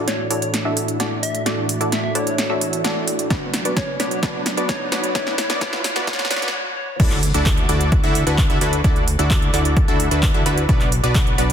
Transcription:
Already playing: analog synth pad A2 E3 D4 F#4, supersaw synth D4 E4 F#4 A4 D5, riser
0.07 soft synth lead C#5, snare, closed hi-hat
0.30 supersaw synth D4 E4 F#4 A4 D5, soft synth lead C#5, open hi-hat
0.42 soft synth lead C#5, closed hi-hat
0.54 snare, closed hi-hat
0.65 supersaw synth D4 E4 F#4 A4 E5
0.77 open hi-hat
0.88 closed hi-hat
1.00 supersaw synth D4 E4 F#4 A4 D5, snare, closed hi-hat
1.23 soft synth lead E5, open hi-hat
1.35 closed hi-hat
1.46 supersaw synth D4 E4 F#4 A4 D5, snare, closed hi-hat
1.69 open hi-hat
1.81 supersaw synth D4 E4 F#4 A4 D5, closed hi-hat
1.92 soft synth lead E5, snare, closed hi-hat
2.04 soft synth lead E5
2.15 supersaw synth D4 E4 F#4 A4 D5, soft synth lead C#5, open hi-hat
2.27 closed hi-hat
2.38 snare, closed hi-hat
2.50 supersaw synth D4 E4 F#4 A4 E5
2.61 open hi-hat
2.73 closed hi-hat
2.84 supersaw synth D4 E4 F#4 A4 D5, snare, closed hi-hat
3.08 open hi-hat
3.19 closed hi-hat
3.30 analog synth pad B2 F#3, supersaw synth B3 D4 F#4 B4 D5, kick, snare, closed hi-hat
3.54 snare, open hi-hat
3.65 supersaw synth B3 D4 F#4 B4 D5, closed hi-hat
3.77 soft synth lead C#5, kick, snare, closed hi-hat
4.00 supersaw synth B3 D4 F#4 B4 D5, soft synth lead C#5, snare, open hi-hat
4.11 soft synth lead C#5, closed hi-hat
4.23 supersaw synth B3 D4 F#4 B4 D5, kick, snare, closed hi-hat
4.46 snare, open hi-hat
4.57 supersaw synth B3 D4 F#4 B4 D5, closed hi-hat
4.69 soft synth lead C#5, kick, snare, closed hi-hat
4.92 supersaw synth B3 D4 F#4 B4 D5, soft synth lead C#5, snare, open hi-hat
5.03 soft synth lead C#5, closed hi-hat
5.15 supersaw synth B3 D4 F#4 B4 D5, analog synth pad E4, soft synth lead C#5, kick, snare, closed hi-hat
5.27 snare
5.38 soft synth lead C#5, snare, open hi-hat
5.50 supersaw synth B3 D4 F#4 B4 D5, soft synth lead C#5, snare, closed hi-hat
5.61 supersaw synth B3 D4 F#4 B4 D5, soft synth lead C#5, kick, snare, closed hi-hat
5.73 snare
5.84 soft synth lead C#5, snare, open hi-hat
5.96 supersaw synth B3 D4 F#4 B4 D5, soft synth lead C#5, snare, open hi-hat
6.07 supersaw synth B3 D4 F#4 B4 D5, soft synth lead C#5, kick, snare, closed hi-hat
6.13 snare
6.19 snare, closed hi-hat
6.25 snare
6.30 supersaw synth B3 D4 F#4 B4 D5, soft synth lead C#5, snare, open hi-hat
6.36 snare
6.42 snare, closed hi-hat
6.48 snare
6.54 soft synth lead C#5
6.77 soft synth lead C#5
7.00 analog synth bass D2, supersaw synth D4 E4 F#4 A4 D5, kick, closed hi-hat, crash, impact
7.11 clap, closed hi-hat
7.23 open hi-hat
7.34 analog synth bass D2, supersaw synth D4 E4 F#4 A4 D5, closed hi-hat
7.46 kick, clap, closed hi-hat
7.57 closed hi-hat
7.69 analog synth bass D2, supersaw synth D4 E4 F#4 A4 D5, open hi-hat
7.81 closed hi-hat
7.92 kick, closed hi-hat
8.04 analog synth bass D2, supersaw synth D4 E4 F#4 A4 E5, closed hi-hat
8.15 open hi-hat
8.27 analog synth bass D2, supersaw synth D4 E4 F#4 A4 B4, closed hi-hat
8.38 kick, clap, closed hi-hat
8.50 analog synth bass D2, supersaw synth D4 E4 F#4 A4 E5, closed hi-hat
8.61 analog synth bass D2, supersaw synth D4 E4 F#4 A4 B4, open hi-hat
8.73 closed hi-hat
8.84 supersaw synth D4 E4 F#4 A4 D5, kick, closed hi-hat
8.96 closed hi-hat
9.08 open hi-hat
9.19 analog synth bass D2, supersaw synth D4 E4 F#4 A4 D5, closed hi-hat
9.30 kick, clap, closed hi-hat
9.42 closed hi-hat
9.54 analog synth bass D2, supersaw synth D4 E4 F#4 A4 D5, clap, open hi-hat
9.65 closed hi-hat
9.77 kick, closed hi-hat
9.88 analog synth bass D2, supersaw synth D4 E4 F#4 A4 E5, closed hi-hat
10.00 open hi-hat
10.11 analog synth bass D2, supersaw synth D4 E4 F#4 A4 B4, closed hi-hat
10.23 kick, clap, closed hi-hat
10.34 analog synth bass D2, supersaw synth D4 E4 F#4 A4 E5, closed hi-hat
10.46 analog synth bass D2, supersaw synth D4 E4 F#4 A4 B4, open hi-hat
10.58 closed hi-hat
10.69 analog synth bass B1, supersaw synth B3 D4 F#4 B4 D5, kick, closed hi-hat
10.81 clap, closed hi-hat
10.92 open hi-hat
11.04 analog synth bass B1, supersaw synth B3 D4 F#4 B4 D5, closed hi-hat
11.15 kick, clap, closed hi-hat
11.27 closed hi-hat
11.38 analog synth bass B1, supersaw synth B3 D4 F#4 B4 D5, open hi-hat

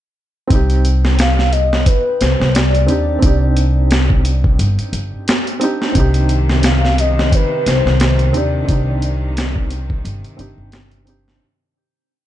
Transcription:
0.47 upright bass C2, felt piano C4, kick, closed hi-hat
0.52 felt piano D#4 G4
0.70 closed hi-hat
0.85 closed hi-hat
1.05 snare
1.19 soft synth lead F5, snare, closed hi-hat
1.39 snare
1.52 soft synth lead D#5, closed hi-hat
1.73 snare
1.86 soft synth lead B4, kick, closed hi-hat
2.20 upright bass C2, soft synth lead C5, snare, closed hi-hat
2.40 upright bass C2, snare
2.55 soft synth lead D5, snare, closed hi-hat
2.75 closed hi-hat
2.87 upright bass D#2, felt piano C4 D4 D#4 G4, soft synth lead D5, closed hi-hat
3.19 felt piano C4 D4, kick, closed hi-hat
3.23 upright bass C2, felt piano D#4 G4
3.57 closed hi-hat
3.91 snare, closed hi-hat
4.10 kick
4.25 closed hi-hat
4.44 kick
4.59 upright bass G1, closed hi-hat
4.79 closed hi-hat
4.93 upright bass G1, closed hi-hat
5.28 snare, closed hi-hat
5.47 closed hi-hat
5.60 felt piano C4 D4 D#4, closed hi-hat
5.64 felt piano G4
5.82 snare
5.92 upright bass C2, felt piano C4, kick, closed hi-hat
5.96 string section C3 D#3, felt piano D#4 G4
6.14 closed hi-hat
6.29 closed hi-hat
6.49 snare
6.63 soft synth lead F5, snare, closed hi-hat
6.85 snare
6.98 soft synth lead D#5, closed hi-hat
7.19 snare
7.32 soft synth lead B4, kick, closed hi-hat
7.66 upright bass C2, soft synth lead C5, snare, closed hi-hat
7.86 upright bass C2, snare
8.00 soft synth lead C5, snare, closed hi-hat
8.19 closed hi-hat
8.33 upright bass D#2, felt piano C4 D4 D#4 G4, closed hi-hat
8.37 soft synth lead D5
8.65 upright bass C2, felt piano C4 D4, kick, closed hi-hat
8.70 felt piano D#4 G4
9.02 closed hi-hat
9.37 snare, closed hi-hat
9.56 kick
9.71 closed hi-hat
9.90 kick
10.05 upright bass G1, closed hi-hat
10.24 closed hi-hat
10.37 upright bass G1, felt piano C4 D4 D#4 G4, closed hi-hat
10.58 upright bass G1
10.72 snare, closed hi-hat
10.91 closed hi-hat
11.05 felt piano C4 D4 D#4 G4, closed hi-hat
11.28 snare

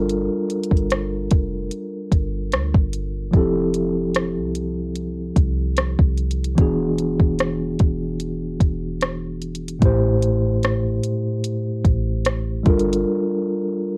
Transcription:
Already playing: 808-style bass G1, tine electric piano G3 D4 F4 A4 A#4
0.09 closed hi-hat
0.50 closed hi-hat
0.63 closed hi-hat
0.71 808-style bass G1, kick
0.77 closed hi-hat
0.90 cross-stick, closed hi-hat
1.31 808-style bass F1, kick, closed hi-hat
1.71 closed hi-hat
2.12 808-style bass G1, kick, closed hi-hat
2.52 808-style bass D2, cross-stick, closed hi-hat
2.74 808-style bass G1, kick
2.93 closed hi-hat
3.31 808-style bass F1, tine electric piano F3 C4 E4, kick, closed hi-hat
3.36 tine electric piano G4 A4
3.74 closed hi-hat
4.15 cross-stick, closed hi-hat
4.37 808-style bass C2
4.55 closed hi-hat
4.95 closed hi-hat
5.36 808-style bass C2, kick, closed hi-hat
5.77 cross-stick, closed hi-hat
5.99 808-style bass C2, kick
6.17 closed hi-hat
6.31 closed hi-hat
6.44 closed hi-hat
6.55 808-style bass E1, tine electric piano E3 B3 D4, kick, closed hi-hat
6.60 tine electric piano F#4 G#4
6.98 closed hi-hat
7.20 808-style bass E1, kick
7.39 cross-stick, closed hi-hat
7.79 808-style bass E1, kick, closed hi-hat
8.20 closed hi-hat
8.60 808-style bass E1, kick, closed hi-hat
9.01 cross-stick, closed hi-hat
9.42 closed hi-hat
9.55 closed hi-hat
9.68 closed hi-hat
9.79 808-style bass A1, tine electric piano A2 A3 E4, kick, closed hi-hat
9.84 tine electric piano G4 C5
10.23 closed hi-hat
10.63 cross-stick, closed hi-hat
11.03 closed hi-hat
11.44 closed hi-hat
11.85 808-style bass A1, kick, closed hi-hat
12.25 cross-stick, closed hi-hat
12.63 808-style bass G1, tine electric piano G3 D4 F4, kick, closed hi-hat
12.68 tine electric piano A4 A#4
12.79 closed hi-hat
12.93 closed hi-hat

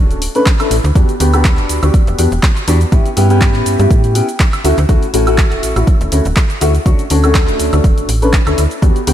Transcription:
Already playing: fm bass D1, grand piano A3 C#4 D4 F#4
0.11 closed hi-hat, shaker
0.22 open hi-hat, shaker
0.35 grand piano A3 C#4 D4 B4, closed hi-hat, shaker
0.46 kick, clap, closed hi-hat, shaker
0.60 grand piano A3 C#4 D4 E4, closed hi-hat, high woodblock, shaker
0.71 fm bass A1, open hi-hat, shaker
0.84 fm bass D2, closed hi-hat, shaker
0.95 fm bass E2, grand piano B3 D4 F#4 G4, kick, closed hi-hat, shaker
1.09 closed hi-hat, shaker
1.20 fm bass D2, grand piano B3 D4 F#4 G4, open hi-hat, shaker
1.33 grand piano B3 D4 F#4 G4, closed hi-hat, high woodblock, shaker
1.45 kick, clap, closed hi-hat, shaker
1.58 fm bass E1, closed hi-hat
1.69 fm bass D2, open hi-hat, shaker
1.82 fm bass D2, grand piano B3 D4 F#4 G4, closed hi-hat, high woodblock, shaker
1.94 kick, closed hi-hat, shaker
2.07 fm bass E1, closed hi-hat, shaker
2.18 fm bass E2, grand piano B3 D4 F#4 G4, open hi-hat, shaker
2.32 fm bass E1, closed hi-hat, shaker
2.43 kick, clap, closed hi-hat, shaker
2.57 closed hi-hat, shaker
2.67 fm bass E2, grand piano B3 D4 F#4 G4, open hi-hat, shaker
2.81 closed hi-hat, shaker
2.92 fm bass A1, grand piano B3 C#4 E4 G4, kick, closed hi-hat, shaker
3.06 closed hi-hat, shaker
3.16 fm bass G2, grand piano B3 C#4 E4 G4, open hi-hat, shaker
3.30 grand piano B3 C#4 E4 G4, closed hi-hat, shaker
3.41 kick, clap, closed hi-hat, shaker
3.55 fm bass A2, closed hi-hat
3.66 fm bass G2, open hi-hat, shaker
3.79 fm bass G2, grand piano B3 C#4 E4 G4, closed hi-hat, shaker
3.91 fm bass A2, kick, closed hi-hat, shaker
4.04 closed hi-hat, shaker
4.15 grand piano B3 C#4 E4 G4, open hi-hat, shaker
4.29 closed hi-hat, shaker
4.40 kick, clap, closed hi-hat, shaker
4.53 closed hi-hat, high woodblock, shaker
4.64 fm bass D2, grand piano A3 C#4 E4 F#4, open hi-hat, shaker
4.78 fm bass D2, closed hi-hat, shaker
4.89 fm bass D2, grand piano A3 C#4 E4 F#4, kick, closed hi-hat, shaker
5.02 closed hi-hat, shaker
5.13 fm bass A1, grand piano A3 C#4 E4 F#4, open hi-hat, shaker
5.27 grand piano A3 C#4 E4 F#4, closed hi-hat, high woodblock, shaker
5.38 kick, clap, closed hi-hat, shaker
5.52 fm bass D1, closed hi-hat
5.63 fm bass A1, open hi-hat, shaker
5.76 fm bass A1, grand piano A3 C#4 E4 F#4, closed hi-hat, high woodblock, shaker
5.87 kick, closed hi-hat, shaker
6.01 fm bass D1, closed hi-hat, shaker
6.12 fm bass D2, grand piano A3 C#4 E4 F#4, open hi-hat, shaker
6.25 fm bass D1, closed hi-hat, shaker
6.36 kick, clap, closed hi-hat, shaker
6.50 closed hi-hat, shaker
6.61 fm bass D2, grand piano A3 C#4 E4 F#4, open hi-hat, shaker
6.75 closed hi-hat, shaker
6.86 fm bass D2, grand piano A3 C#4 D4 F#4, kick, closed hi-hat, shaker
6.99 closed hi-hat, shaker
7.10 fm bass D2, grand piano A3 C#4 D4 F#4, open hi-hat, shaker
7.24 grand piano A3 C#4 D4 F#4, closed hi-hat, high woodblock, shaker
7.35 kick, clap, closed hi-hat, shaker
7.48 fm bass D1, closed hi-hat, shaker
7.60 fm bass D2, open hi-hat, shaker
7.73 fm bass D2, grand piano A3 C#4 D4 F#4, closed hi-hat, high woodblock, shaker
7.84 fm bass D1, kick, closed hi-hat, shaker
7.98 fm bass A1, closed hi-hat, shaker
8.09 fm bass A1, open hi-hat, shaker
8.22 grand piano A3 C#4 D4 B4, closed hi-hat, shaker
8.33 kick, clap, closed hi-hat, shaker
8.46 fm bass D2, grand piano A3 C#4 D4 E4, closed hi-hat, high woodblock, shaker
8.58 fm bass D2, open hi-hat, shaker
8.71 closed hi-hat, shaker
8.82 fm bass E2, grand piano B3 D4 F#4 G4, kick, closed hi-hat, shaker
8.96 closed hi-hat, shaker
9.07 fm bass D2, grand piano B3 D4 F#4 G4, open hi-hat, shaker

